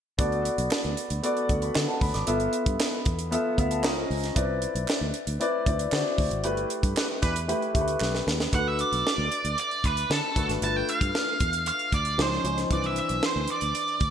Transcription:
0.18 fingered electric bass D2, grand piano B3 F#4 A4 D5, kick, closed hi-hat
0.32 closed hi-hat
0.45 closed hi-hat
0.58 fingered electric bass B1, closed hi-hat
0.71 snare, clap
0.84 fingered electric bass D2, closed hi-hat
0.97 closed hi-hat
1.10 fingered electric bass D2, closed hi-hat
1.23 grand piano B3 F#4 A4 D5, closed hi-hat
1.37 closed hi-hat
1.49 fingered electric bass D2, grand piano D5 F#5, kick, closed hi-hat
1.62 grand piano B5, closed hi-hat
1.75 fingered electric bass D3, snare, clap
1.88 grand piano F#5 A5
2.01 fingered electric bass D2, grand piano B5, kick, open hi-hat
2.14 fingered electric bass G#1, grand piano B5 D6, snare, closed hi-hat
2.27 fingered electric bass G1, grand piano B3 F4 A4 E5, closed hi-hat
2.40 closed hi-hat
2.53 closed hi-hat
2.66 fingered electric bass G2, kick, closed hi-hat
2.80 snare, clap
3.05 fingered electric bass E2, kick, closed hi-hat
3.19 closed hi-hat
3.31 grand piano B3 F4 A4 E5, closed hi-hat
3.57 fingered electric bass D2, grand piano B3 F4 A4 E5 F5, kick, closed hi-hat
3.71 grand piano A5, closed hi-hat
3.83 fingered electric bass C#2, grand piano C#4 F4 C5 D#5 A#5, snare, clap
4.10 fingered electric bass C#2, open hi-hat
4.24 snare, closed hi-hat
4.35 fingered electric bass C2, grand piano C4 E4 B4 D5, kick, closed hi-hat
4.62 closed hi-hat
4.75 fingered electric bass B1, closed hi-hat
4.88 snare, clap
5.01 fingered electric bass D2
5.14 closed hi-hat
5.27 fingered electric bass D2, closed hi-hat
5.40 grand piano C4 E4 B4 D5, closed hi-hat
5.66 fingered electric bass D2, grand piano C4 E4 B4 D5, kick, closed hi-hat
5.79 closed hi-hat
5.92 fingered electric bass D3, grand piano C4 E4 F#4 D5, snare, clap
6.18 fingered electric bass D2, kick, open hi-hat
6.31 fingered electric bass G#1, closed hi-hat
6.44 fingered electric bass G1, grand piano A3 E4 G4 B4, closed hi-hat
6.57 closed hi-hat
6.70 closed hi-hat
6.83 fingered electric bass G2, kick, closed hi-hat
6.96 horn section E3 D4 B4, snare, clap
7.21 fingered electric bass E2, horn section E3 D4 B4, kick, closed hi-hat
7.36 closed hi-hat
7.47 grand piano A3 E4 G4 B4, closed hi-hat
7.62 closed hi-hat
7.74 fingered electric bass D2, grand piano A3 E4 G4 A4, kick, closed hi-hat
7.81 grand piano B4
7.88 closed hi-hat
8.00 fingered electric bass B1, snare, clap
8.15 snare
8.27 fingered electric bass D#2, snare
8.40 snare
8.52 fingered electric bass D2, grand piano A3 D4 F#4 B4, lead electric guitar F#5, kick, closed hi-hat
8.68 lead electric guitar E5
8.79 lead electric guitar D5, closed hi-hat
8.92 fingered electric bass B1, closed hi-hat
9.07 snare
9.18 fingered electric bass D2
9.32 closed hi-hat
9.45 fingered electric bass D2, closed hi-hat
9.58 lead electric guitar D5, closed hi-hat
9.71 closed hi-hat
9.84 fingered electric bass D2, lead electric guitar B4, kick, closed hi-hat
9.97 closed hi-hat
10.10 fingered electric bass D3, lead electric guitar A4, snare
10.36 fingered electric bass D2, grand piano A3 D4 F#4 B4, kick, closed hi-hat
10.49 fingered electric bass G#1, snare, closed hi-hat
10.62 fingered electric bass G1, grand piano A3 D4 F4 B4, lead electric guitar A5, closed hi-hat
10.76 lead electric guitar G5
10.89 lead electric guitar F5, closed hi-hat
11.01 fingered electric bass G2, kick, closed hi-hat
11.15 snare
11.40 fingered electric bass E2, kick, closed hi-hat
11.53 closed hi-hat
11.66 lead electric guitar F5, closed hi-hat
11.79 closed hi-hat
11.92 fingered electric bass D2, lead electric guitar D5, kick, closed hi-hat
12.05 closed hi-hat
12.18 fingered electric bass C#2, grand piano F3 C#4 D#4 C5, lead electric guitar C5, snare
12.32 snare
12.44 fingered electric bass C#2, grand piano F3 C#4 D#4 C5, closed hi-hat
12.58 snare, closed hi-hat
12.70 fingered electric bass C2, grand piano E3 C4 D4 B4, lead electric guitar D5, kick, closed hi-hat
12.84 lead electric guitar E5, closed hi-hat
12.96 lead electric guitar E5, closed hi-hat
13.09 fingered electric bass B1, closed hi-hat
13.23 lead electric guitar C5, snare
13.36 fingered electric bass D2
13.48 lead electric guitar D5, closed hi-hat
13.61 fingered electric bass D2, closed hi-hat
13.75 closed hi-hat
13.88 closed hi-hat
14.00 fingered electric bass D2, kick, closed hi-hat

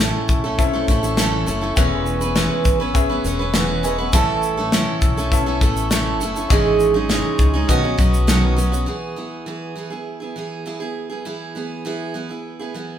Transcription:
Already playing: upright bass A1, grand piano C#4 E4 A4 E5, glass harmonica A4 E5 C#6
0.00 steel-string acoustic guitar A2 E3 A3 C#4 E4 A4, shaker
0.29 upright bass B1, kick, shaker
0.44 steel-string acoustic guitar A3 C#4 E4 A4
0.57 grand piano C4 E4 A4 E5, kick, shaker
0.64 grand piano C#4
0.73 steel-string acoustic guitar A3 C#4 E4 A4
0.88 upright bass A1, steel-string acoustic guitar A3 C#4 E4 A4, kick, shaker
1.03 steel-string acoustic guitar A3 C#4 E4 A4, shaker
1.17 steel-string acoustic guitar A2 E3 A3 C#4 E4 A4, snare, shaker
1.46 upright bass F#1, steel-string acoustic guitar A3 C#4 E4 A4, shaker
1.61 steel-string acoustic guitar A3 C#4 E4 A4
1.76 upright bass E1, steel-string acoustic guitar E3 G#3 B3 C#4 B4, grand piano C#4 G#4 B4 E5, glass harmonica B4 G#5 E6, kick, shaker
2.06 shaker
2.21 steel-string acoustic guitar B3 C#4 B4, shaker
2.35 steel-string acoustic guitar E3 G#3 B3 C#4 B4, snare, shaker
2.65 upright bass G#1, kick, shaker
2.80 steel-string acoustic guitar B3 C#4 B4
2.94 grand piano C#4 G#4 B4 E5, kick, shaker
3.09 steel-string acoustic guitar B3 C#4 B4
3.24 upright bass E1, steel-string acoustic guitar G#3 B3 C#4 B4, shaker
3.39 steel-string acoustic guitar B3 C#4 B4
3.54 steel-string acoustic guitar E3 G#3 B3 C#4 B4, grand piano C#5 F#5, snare, shaker
3.83 steel-string acoustic guitar G#3 B3 C#4 B4, grand piano D#5 G#5, shaker
3.98 steel-string acoustic guitar B3 C#4 B4, grand piano F#5 B5
4.12 upright bass A1, steel-string acoustic guitar A2 E3 A3 C#4 E4 A4, grand piano C#4 E4 A4 E5, glass harmonica A4 E5, kick, shaker
4.43 shaker
4.57 steel-string acoustic guitar A3 C#4 E4 A4
4.72 steel-string acoustic guitar A2 E3 A3 C#4 E4 A4, snare, shaker
5.02 upright bass B1, kick, shaker
5.17 steel-string acoustic guitar A3 C#4 E4 A4, shaker
5.31 grand piano B3 E4 A4 E5, kick, shaker
5.37 grand piano C#4
5.46 steel-string acoustic guitar A3 C#4 E4 A4
5.61 upright bass A1, steel-string acoustic guitar A3 C#4 E4 A4, kick, shaker
5.77 shaker
5.91 steel-string acoustic guitar A2 E3 A3 C#4 E4 A4, snare, shaker
6.20 upright bass F#1, steel-string acoustic guitar A3 C#4 E4 A4, shaker
6.36 steel-string acoustic guitar A3 C#4 E4 A4, shaker
6.49 upright bass G#1, steel-string acoustic guitar G#2 E3 G#3 C#4 D#4 G#4, grand piano C#4 E4 G#4 D#5, glass harmonica G#4 D#5 C#6 D#6, kick, shaker
6.80 shaker
6.94 steel-string acoustic guitar G#3 C#4 D#4 G#4
7.09 steel-string acoustic guitar G#2 E3 G#3 C#4 D#4 G#4, snare, shaker
7.39 upright bass C#2, kick, shaker
7.54 steel-string acoustic guitar G#3 C#4 D#4 G#4
7.67 upright bass B1, steel-string acoustic guitar B2 D#3 F#3 B3 C#4 F#4, grand piano C#4 F#4 B4 D#5, glass harmonica B4 F#5 C#6, kick, shaker
7.83 steel-string acoustic guitar F#3 B3 C#4 F#4
7.98 upright bass B1, steel-string acoustic guitar F#3 B3 C#4 F#4, kick, shaker
8.14 shaker
8.27 steel-string acoustic guitar B2 D#3 F#3 B3 C#4 F#4, snare, shaker
8.56 steel-string acoustic guitar F#3 B3 C#4 F#4, shaker
8.72 steel-string acoustic guitar F#3 B3 C#4 F#4, shaker
8.86 steel-string acoustic guitar E3 B3 E4 G#4
9.16 steel-string acoustic guitar E3 B3 E4 G#4
9.46 steel-string acoustic guitar E3 B3 E4 G#4
9.75 steel-string acoustic guitar E3 B3 E4 G#4
9.90 steel-string acoustic guitar B3 E4 G#4
10.20 steel-string acoustic guitar B3 E4 G#4
10.36 steel-string acoustic guitar E3 B3 E4 G#4
10.66 steel-string acoustic guitar E3 B3 E4 G#4
10.80 steel-string acoustic guitar B3 E4 G#4
11.10 steel-string acoustic guitar B3 E4 G#4
11.25 steel-string acoustic guitar E3 B3 E4 G#4
11.55 steel-string acoustic guitar E3 B3 E4 G#4
11.85 steel-string acoustic guitar E3 B3 E4 G#4
12.14 steel-string acoustic guitar E3 B3 E4 G#4
12.29 steel-string acoustic guitar B3 E4 G#4
12.59 steel-string acoustic guitar B3 E4 G#4
12.74 steel-string acoustic guitar E3 B3 E4 G#4

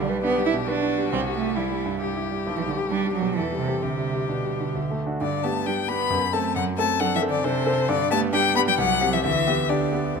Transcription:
Already playing: grand piano B1 G3, violin D4
0.01 cello G3
0.09 grand piano B4
0.23 cello B3, grand piano D4, violin G4
0.38 grand piano G3
0.45 cello E4
0.53 grand piano B2
0.67 cello D4, violin F#4, grand piano B4
0.82 grand piano D4
0.98 grand piano G3
1.12 grand piano C2, cello C4
1.27 grand piano G3
1.34 cello A3
1.41 grand piano G4
1.56 cello G3, violin E4, grand piano E4
1.71 grand piano G3
1.86 grand piano G2
2.01 violin G4, grand piano G4
2.16 grand piano E4
2.31 grand piano G3
2.46 grand piano B1
2.57 cello E3
2.62 grand piano G3
2.68 cello D3
2.77 grand piano G4
2.90 cello G3, grand piano D4
3.07 grand piano G3
3.14 cello F#3
3.22 grand piano B2
3.36 grand piano E2, cello E3, violin A4
3.52 grand piano G3
3.59 cello C3
3.67 grand piano C4 G4
3.82 grand piano D2, cello C3, violin G4
3.98 grand piano G3
4.14 grand piano G4
4.29 cello B2, grand piano D4
4.45 grand piano G3
4.60 grand piano D3
4.75 grand piano D2
4.91 grand piano A3
5.06 grand piano D4 F#4
5.21 grand piano G2, cello D3, violin D5
5.44 cello A3, grand piano B3 G4, violin A5
5.66 cello G3, grand piano D4 G4, violin G5
5.88 cello B3, grand piano B3 G4, violin B5
6.10 grand piano F#2
6.33 cello A3, grand piano C4 A4, violin A5
6.56 grand piano F#2, cello F#3, violin F#5
6.78 cello A3, grand piano C4 A4, violin A5
7.00 cello F#3, grand piano D4 A4, violin F#5
7.15 cello E3, violin E5
7.22 grand piano C4 A4
7.29 cello D3, violin D5
7.44 cello C3, grand piano D4 A4, violin C5
7.66 grand piano C4 A4
7.89 grand piano G2, cello D3, violin D5
8.11 cello A3, grand piano B3 G4, violin A5
8.33 cello G3, grand piano D4 G4, violin G5
8.55 grand piano B3 G4, cello B3, violin B5
8.67 cello G3, violin G5
8.78 grand piano C2, cello F#3, violin F#5
9.01 grand piano C4 G4
9.13 cello E3, violin E5
9.24 grand piano D2, cello E3, violin E5
9.47 grand piano B3 G4
9.69 cello D3, grand piano D4 G4, violin D5
9.93 grand piano B3 G4
10.15 grand piano D2

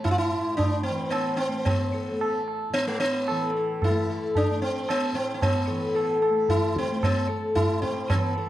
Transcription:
Already playing: tanpura A2 E3 A3
0.04 sitar E4, tabla na, tabla ge
0.11 sitar F4
0.18 sitar E4
0.28 tanpura A2
0.57 sitar D4, tabla tin, tabla ge
0.83 sitar C4
0.89 tanpura E3
1.10 sitar B3, tabla na
1.37 sitar C4
1.49 tanpura A3
1.65 sitar B3, tabla tin, tabla ge
1.94 sitar A4
2.11 tanpura A3
2.21 tabla na
2.48 tabla na
2.70 tanpura A2, sitar B3
2.74 tabla tin
2.87 sitar A3
3.00 sitar B3
3.28 tanpura E3, sitar A4, tabla na
3.57 sitar A4
3.82 sitar E4, tabla na, tabla ge
3.90 tanpura A3
4.10 sitar A4
4.35 sitar D4, tabla tin, tabla ge
4.51 tanpura A3
4.62 sitar C4
4.89 sitar B3, tabla na
5.12 tanpura A2, sitar C4
5.34 sitar C4
5.42 sitar B3, tabla tin, tabla ge
5.68 tanpura E3, sitar A4
5.95 sitar A4, tabla na
6.22 sitar A4, tabla na
6.30 tanpura A3
6.49 sitar E4, tabla tin, tabla ge
6.76 sitar C4, tabla ke
6.92 tanpura A3
7.03 sitar B3, tabla na, tabla ge
7.29 sitar A4
7.54 tanpura A2, sitar E4, tabla tin, tabla ge
7.82 sitar C4, tabla ke
8.10 tanpura E3, sitar B3, tabla na, tabla ge
8.38 sitar A4

